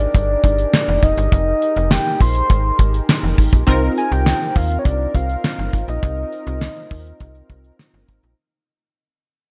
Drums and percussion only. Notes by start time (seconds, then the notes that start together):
0.00 closed hi-hat
0.14 kick, closed hi-hat
0.44 kick, closed hi-hat
0.58 closed hi-hat
0.74 snare, clap, closed hi-hat
1.03 kick, closed hi-hat
1.17 closed hi-hat
1.32 kick, closed hi-hat
1.62 closed hi-hat
1.76 closed hi-hat
1.91 snare, clap, closed hi-hat
2.20 kick, open hi-hat
2.35 closed hi-hat
2.50 kick, closed hi-hat
2.79 kick, closed hi-hat
2.94 closed hi-hat
3.09 snare, clap, closed hi-hat
3.38 kick, open hi-hat
3.53 kick, closed hi-hat
3.68 kick, closed hi-hat
3.98 closed hi-hat
4.12 closed hi-hat
4.26 snare, clap
4.42 closed hi-hat
4.55 kick, open hi-hat
4.70 closed hi-hat
4.85 kick, closed hi-hat
5.15 kick, closed hi-hat
5.29 closed hi-hat
5.44 snare, clap
5.58 closed hi-hat
5.73 kick, closed hi-hat
5.88 closed hi-hat
6.03 kick, closed hi-hat
6.33 closed hi-hat
6.47 closed hi-hat
6.61 snare, clap
6.77 closed hi-hat
6.91 kick, open hi-hat
7.05 closed hi-hat
7.20 kick, closed hi-hat
7.35 closed hi-hat
7.50 kick, closed hi-hat
7.64 closed hi-hat
7.79 snare, clap
8.09 kick, closed hi-hat
8.23 closed hi-hat